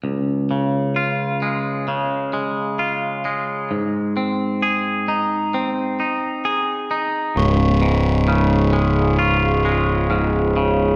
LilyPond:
<<
  \new Staff \with { instrumentName = "Glockenspiel" } { \time 4/4 \key des \major \tempo 4 = 66 r1 | r1 | des'''4 f'''4 des'''4 f'''4 | }
  \new Staff \with { instrumentName = "Ambient pad" } { \time 4/4 \key des \major r1 | r1 | <aes' f'' des'''>1 | }
  \new Staff \with { instrumentName = "Clean electric guitar" } { \clef bass \time 4/4 \key des \major des,8 des8 f'8 aes8 des8 aes8 f'8 aes8 | aes,8 c'8 aes'8 ees'8 c'8 ees'8 aes'8 ees'8 | des,8 aes,8 des8 aes8 f'8 aes8 aes,8 des8 | }
  \new Staff \with { instrumentName = "Fingered electric bass" } { \clef bass \time 4/4 \key des \major r1 | r1 | des,,1 | }
>>